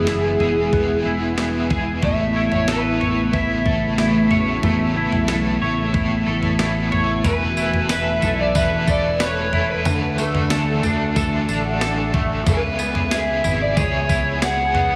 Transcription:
Already playing: F#1 E3 G#3 B3 E4 G#4
0.06 G#3 B3 E4, snare
0.11 G#4
0.38 E1 E4 G#4, floor tom
0.43 B3
0.72 E3 G#3 B3 E4 G#4, kick, floor tom
1.04 E1 E4 G#4
1.09 B3
1.36 G#3 B3 E4, snare
1.41 G#4
1.69 E4 G#4, kick, floor tom
1.74 B3
2.02 A1 C#3 E3 A3 B3 E4 A4 C#5 E5, kick, floor tom
2.34 A4 C#5
2.39 E4
2.52 A1 C#5, floor tom
2.67 B3 E4 A4 B4, snare
2.72 C#5
3.00 A4 C#5, floor tom
3.04 E4
3.33 A3 B3 E4 A4 C#5 E5, kick, floor tom
3.65 A4 C#5, kick
3.70 E4
3.98 B3 E4 A4, snare
4.03 C#5
4.22 C#4
4.27 E4 C#5, floor tom
4.32 E4 F#4 A4
4.62 A1 A3 B3 E4 A4 C#5, floor tom
4.96 E4 A4 C#5
5.01 E4
5.12 B1, floor tom
5.28 B3 E4 A4, snare
5.33 C#5
5.60 A1 A4 C#5
5.64 E4
5.93 A3 B3 E4 A4 C#5, kick, floor tom
6.26 A1 A4 C#5
6.30 E4
6.43 floor tom
6.59 B3 E4 A4, snare
6.64 C#5
6.91 A4 C#5, floor tom
6.96 E4
7.24 E1 E3 A3 E4 A4 B4 E5 B5, kick, floor tom, tambourine
7.50 F#4
7.57 E4 A4 B4, tambourine
7.61 E4
7.74 floor tom
7.89 E3 A3 E4 A4 B4 E5, snare, tambourine
8.22 B1 A4 B4, floor tom, tambourine
8.26 E4 D5
8.40 D5
8.54 E1 A3 E4 A4 E5, kick, floor tom, tambourine
8.59 B4
8.86 A4 B4 D5, kick, tambourine
8.90 E4
9.20 E3 A3 E4 A4 B4 C#5, snare, tambourine
9.52 A4 B4, floor tom
9.57 E4
9.71 B4
9.85 D2 D3 E3 A3 D4 A4 D5 D6, floor tom, tambourine
10.17 D4 A4, tambourine
10.22 A3
10.34 D2, floor tom
10.44 D5
10.50 D3 E3 A3 D4 A4, snare, tambourine
10.83 D2 D4 A4, floor tom, tambourine
10.87 A3
11.15 E3 A3 D4, kick, floor tom, tambourine
11.20 A4
11.48 A1 D4 A4, tambourine
11.53 A3
11.65 F#5
11.81 D3 E3 D4 A4, snare, tambourine
12.13 D4 A4, kick, floor tom
12.18 A3
12.46 C#2 C#3 G#3 B3 E4 G#4 B4 C#5 B5, kick, floor tom, tambourine
12.79 B3 E4 G#4, tambourine
12.84 B3
12.95 floor tom
13.11 C#3 G#3 B3 E4 G#4 E5, snare, tambourine
13.44 G#1 E4 G#4, floor tom, tambourine
13.49 B3
13.62 D5
13.76 C#2 G#3 B3 E4 C#5, kick, floor tom, tambourine
13.81 G#4
14.08 E4 G#4, kick, tambourine
14.13 B3
14.41 C#3 G#3 E4 G#4 F#5, snare, tambourine
14.73 E4 G#4, floor tom
14.77 B3

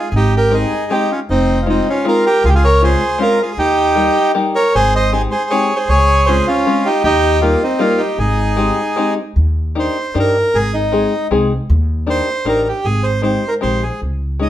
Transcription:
0.10 G#1 G#4
0.16 D#4 G4
0.37 G4 A#4
0.51 G#3 C4 D#4 G4 G#4
0.90 G#3 C4 D#4 G4
1.12 C#4 F4
1.29 F1 C4 D#4
1.62 G#3 F4
1.67 C4 D#4 F4
1.90 C#4 F4
2.05 G#3 C4 D#4 F4 A#4
2.26 G4 A#4
2.44 C#2 F4 G#4
2.49 G4
2.55 F4 G#4
2.64 A#4 C#5
2.82 G#3 C4 C#4 F4 G#4 C5
3.18 G#3 C4 C#4 F4 A#4
3.42 F4 G#4
3.52 G#4
3.57 D#2 D#4 G4
3.95 G3 A#3 D#4 G4
4.35 G3 A#3 D#4 G4
4.55 A#4 C#5
4.75 G#1 G#4 C5
4.96 C5 D#5
5.12 G#3 C4 D#4 G4 G#4 C5
5.31 G#4 C5
5.50 G#3 C4 D#4 G4 G#4 C#5
5.76 G#4 C5
5.88 C#2 G#4 C#5
6.26 G#3 C4 C#4 F4 G#4 C5
6.47 C#4 F4
6.66 G#3 C4 C#4 F4
6.85 D#4 G4
7.04 D#2 D#4 G4
7.41 G3 A#3 D#4 F4 G4
7.63 C4 D#4
7.79 G3 A#3 D#4 F4 G4
7.98 D#4 G4
8.18 G#1 D#4 G#4
8.57 G#3 C4 D#4 G4
8.96 G#3 C4 D#4 G4
9.36 D#2
9.75 A#3 D4 D#4 G4
9.79 C5
10.14 G2 A#3 D4 D#4 G4
10.19 A#4
10.54 G#1 G#4
10.74 D#4
10.92 G#3 C4 D#4 G#4
11.31 C2 G#3 C4 D#4 G#4
11.70 D#2
12.07 A#3 D4 D#4 G4 C5
12.45 A1 A#3 D4 D#4 G4 A#4
12.68 G4
12.85 G#1 G#4
13.03 C5
13.22 G#3 C4 D#4 G4 C5
13.48 A#4
13.61 A#1 G#3 C4 D#4 G4 C5
13.83 G#4
14.02 C#2
14.39 G#3 C#4 D#4 G#4 D#5

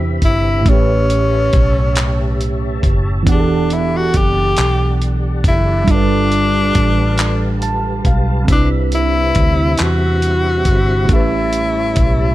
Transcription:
Already playing: E2 C3 C4 D4 E4 G4 B4 E5 B5
0.22 G1 E4, kick, closed hi-hat
0.61 A2 A3
0.66 A1 C#4 C#5 A5, kick, closed hi-hat
0.70 G4 B4
1.10 closed hi-hat
1.53 B1, kick, closed hi-hat
1.96 clap, closed hi-hat
2.41 closed hi-hat
2.83 F#1, kick, closed hi-hat
3.23 E3 B3 F#5, kick
3.27 E1 D4 D5 F#5, closed hi-hat
3.31 D4 G4 G#4
3.40 A4
3.70 E4, closed hi-hat
3.96 F#4
4.14 F#1 G4, kick, closed hi-hat
4.57 B1, clap, closed hi-hat
5.02 closed hi-hat
5.44 F#1 E4, kick, closed hi-hat
5.84 G3 D4, kick, closed hi-hat
5.88 G1 D4 F4 G4 A4 B4 F5 A5
5.95 B4
6.32 closed hi-hat
6.75 A1, kick, closed hi-hat
7.18 clap, closed hi-hat
7.62 A5, closed hi-hat
8.05 B1 F5, kick, closed hi-hat
8.45 C3 G3 C4 E5 B5, kick, closed hi-hat
8.49 C2 C4 D4
8.53 E4 B4
8.92 E4, closed hi-hat
9.35 D2, kick, closed hi-hat
9.78 E2, clap, closed hi-hat
9.82 F#4
10.22 closed hi-hat
10.65 G1, kick, closed hi-hat
11.05 A2 A3
11.09 A1 C#4 E4 C#5 A5, kick, closed hi-hat
11.13 G4 B4
11.53 closed hi-hat
11.96 B1, kick, closed hi-hat

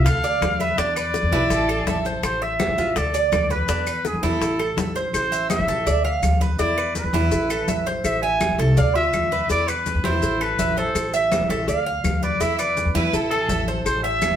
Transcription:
0.04 D2 A4 F5, high bongo, high conga, maracas
0.24 D5, high bongo, high conga, maracas
0.41 D2, high bongo, low bongo, high conga, claves, maracas
0.60 B4 E5, high bongo, high conga, maracas
0.77 E2 D4 D5, high bongo, high conga, maracas
0.96 B4 D5, high conga, claves, maracas
1.14 high bongo, high conga, maracas
1.23 E2
1.32 B1 E4 B4, high bongo, high conga, maracas
1.50 A1 A4, high bongo, high conga, maracas
1.69 A4, high bongo, high conga, claves
1.78 G#4
1.86 A1 A4 E5, high bongo, low bongo, high conga, maracas
2.05 C5, high bongo, high conga, maracas
2.23 A1 C5, high bongo, high conga, claves, maracas
2.42 E5, high bongo, high conga
2.59 high bongo, high conga, claves, maracas
2.68 A1
2.78 A1 F4, maracas
2.96 D2 A4 D5, high bongo, high conga, maracas
3.14 D5, high bongo, high conga, maracas
3.32 D2, high bongo, low bongo, high conga, claves, maracas
3.50 B4, high bongo, high conga, maracas
3.68 E2 D4, high bongo, high conga, maracas
3.86 B4, high conga, claves, maracas
4.05 G#4, high bongo, high conga, maracas
4.14 E2
4.23 E2 E4 A4, high bongo, high conga, maracas
4.41 A1, high bongo, high conga, maracas
4.59 A4, high bongo, high conga, claves
4.77 A1 E5, high bongo, low bongo, high conga, maracas
4.96 C5, high bongo, high conga, maracas
5.13 A1 C5, cowbell, high conga, claves, maracas
5.32 E5, high conga, maracas
5.50 E5, cowbell, high conga, claves, maracas
5.58 A1
5.67 A1 A4, cowbell, maracas
5.86 D2 D5, cowbell, high conga, maracas
6.05 F5, high conga
6.22 D2, cowbell, high conga, claves, maracas
6.41 B4, high conga, maracas
6.59 E2 E4 D5, cowbell, high conga, maracas
6.78 B4, claves
6.95 B4, cowbell, high conga, maracas
7.04 E2
7.13 E2 E4, high conga, maracas
7.31 A1, cowbell, high conga, maracas
7.50 A4, high conga, claves, maracas
7.68 A1 E5, cowbell, high conga, maracas
7.86 C5, cowbell, high conga, maracas
8.04 A1 E5, cowbell, claves, maracas
8.22 E5 G#5, high conga
8.40 cowbell, high conga, claves, maracas
8.50 A1
8.58 C2 A4, cowbell, maracas
8.77 D2 D5 F5, cowbell, high conga, maracas
8.95 F4 E5, high conga
9.13 D2, cowbell, high conga, claves, maracas
9.31 B4, high conga, maracas
9.49 E2 E4 D5, cowbell, high conga, maracas
9.68 B4, high conga, claves, maracas
9.86 cowbell, high conga, maracas
9.95 E2
10.04 E2 E4 C5, high conga, maracas
10.22 A1, cowbell, high conga, maracas
10.41 A4 B4, high conga, claves
10.59 A1 E5, cowbell, high conga, maracas
10.77 A4 C5, cowbell, high conga, maracas
10.95 A1, cowbell, high conga, claves, maracas
11.14 E5, high conga, maracas
11.32 cowbell, high conga, claves, maracas
11.40 A1
11.49 A1 A4 E5, cowbell, maracas
11.68 D2 D5 F5, cowbell, high conga, maracas
11.86 F5, high conga
12.04 D2, cowbell, high conga, claves, maracas
12.22 B4 D5, high conga, maracas
12.40 E2 E4 E5, cowbell, high conga, maracas
12.59 B4 D5, high conga, claves, maracas
12.77 cowbell, high conga, maracas
12.85 E2
12.95 E2 E4 B4, high conga, maracas
13.13 A1 A4, cowbell, high conga, maracas
13.31 A4, high conga, claves
13.40 G#4
13.49 A1 A4 E5, cowbell, high conga, maracas
13.68 C5, cowbell, high conga, maracas
13.85 A1 C5, cowbell, high conga, claves, maracas
14.04 E5, high conga
14.22 cowbell, high conga, claves, maracas
14.31 A1

